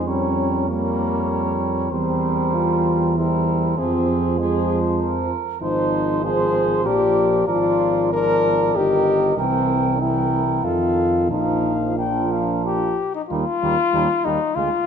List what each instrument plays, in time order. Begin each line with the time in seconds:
Already playing: tuba F2
0.06 trombone G3, french horn C#4, flugelhorn A#4, trumpet C#5
0.68 trombone G3, french horn A#3, flugelhorn A#4, trumpet C#5
1.91 tuba E2, trombone G3, french horn C4, flugelhorn A#4, trumpet C5
2.55 french horn F4
3.17 trombone G3, french horn E4, flugelhorn A#4, trumpet C5
3.78 tuba F2, trombone F3, french horn C4, flugelhorn G#4, trumpet C5
4.39 trombone F3, french horn G#3, flugelhorn G#4, trumpet C5
4.99 flugelhorn A#4
5.61 tuba G#1, trombone F3, french horn D#4, flugelhorn C5, trumpet C5
6.24 trombone F3, french horn G#4, trumpet C5, flugelhorn C5
6.85 tuba A#1, trombone F3, french horn G4, flugelhorn A#4, trumpet D5
7.47 tuba G#1, trombone F3, french horn F4, flugelhorn A#4, trumpet D5
8.12 trombone F3, french horn A#4, flugelhorn A#4, trumpet D5
8.76 tuba G1, trombone D#3, french horn G4, flugelhorn A#4, trumpet D#5
9.37 tuba C2, trombone E3, french horn C4, flugelhorn A#4, trumpet G5
10.01 trombone E3, french horn E4, flugelhorn A#4, trumpet G5
10.64 tuba F2, trombone D#3, french horn F4, flugelhorn A4, trumpet F5
11.30 tuba A#1, trombone F3, french horn D#4, flugelhorn A#4, trumpet F5
11.97 trombone F3, french horn D4, flugelhorn A#4, trumpet G5
12.32 trumpet F5
12.65 trumpet G4
13.15 trumpet D#4
13.29 tuba D#2, trombone G3, french horn A#3, flugelhorn D#4, trumpet F4
13.62 tuba D#2, trombone G3, french horn A#3, flugelhorn D#4
13.93 tuba D#2, trombone G3, french horn A#3, flugelhorn D#4
14.25 tuba D#2, trombone G3, french horn A#3, trumpet D#4, flugelhorn D#4
14.55 tuba D2, trombone G#3, french horn A#3, flugelhorn F4, trumpet F4